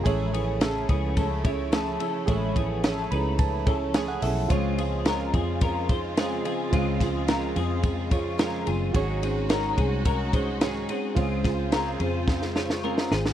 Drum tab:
RD |x-x-x-x-x-x-x-x-|x-x-x-x-x-x-x-x-|x-x-x-x-x-x-x-x-|x-x-x-x-x-x-x-x-|
HH |----------------|--------------o-|p---------------|----------------|
SD |----o-------o---|----o-------o---|----o-------o---|--o-o-------o---|
BD |o-----o-o-o-----|o-o-----o-o-----|o-----o-o-o-----|o-o-----o-o-----|

RD |x-x-x-x-x-x-x-x-|x-x-x-x---------|
HH |----------------|----------------|
SD |----o-------o---|--o-o---oooo-ooo|
BD |o-----o-o-o-----|o-o-----o-------|